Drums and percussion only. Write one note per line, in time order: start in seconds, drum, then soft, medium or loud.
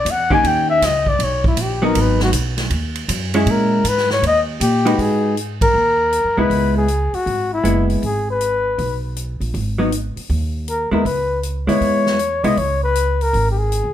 0.06 kick soft
0.06 hi-hat pedal medium
0.06 ride medium
0.31 kick medium
0.44 kick soft
0.44 ride medium
0.82 kick soft
0.82 snare soft
0.82 hi-hat pedal medium
0.82 ride medium
1.06 kick medium
1.19 kick soft
1.19 ride medium
1.44 kick medium
1.57 kick soft
1.57 hi-hat pedal medium
1.57 ride medium
1.95 kick soft
1.95 ride medium
2.20 snare soft
2.33 kick soft
2.33 hi-hat pedal medium
2.33 ride medium
2.57 snare soft
2.57 ride soft
2.70 kick soft
2.70 ride medium
2.95 ride soft
3.09 kick soft
3.09 hi-hat pedal medium
3.09 ride medium
3.34 ride soft
3.46 kick soft
3.46 ride medium
3.85 kick soft
3.85 hi-hat pedal medium
3.85 ride medium
3.98 snare soft
4.10 snare soft
4.23 kick soft
4.23 ride medium
4.60 kick soft
4.60 hi-hat pedal medium
4.60 ride medium
4.86 ride soft
4.98 kick soft
4.98 open hi-hat soft
5.37 closed hi-hat medium
5.61 kick medium
5.61 ride medium
6.13 closed hi-hat soft
6.50 kick soft
6.50 open hi-hat soft
6.88 closed hi-hat soft
7.14 open hi-hat soft
7.26 kick soft
7.26 open hi-hat soft
7.65 closed hi-hat medium
7.90 open hi-hat soft
8.03 kick soft
8.03 open hi-hat soft
8.41 closed hi-hat medium
8.78 kick soft
8.78 open hi-hat soft
9.16 closed hi-hat medium
9.41 open hi-hat soft
9.54 kick soft
9.54 open hi-hat soft
9.92 closed hi-hat medium
10.17 open hi-hat soft
10.30 kick soft
10.30 open hi-hat soft
10.68 closed hi-hat medium
11.05 kick soft
11.05 open hi-hat soft
11.43 closed hi-hat soft
11.69 open hi-hat soft
11.81 kick soft
11.81 open hi-hat soft
12.06 snare soft
12.19 closed hi-hat medium
12.44 open hi-hat soft
12.57 kick soft
12.57 open hi-hat soft
12.95 closed hi-hat medium
13.21 open hi-hat soft
13.34 kick soft
13.34 open hi-hat soft
13.72 closed hi-hat medium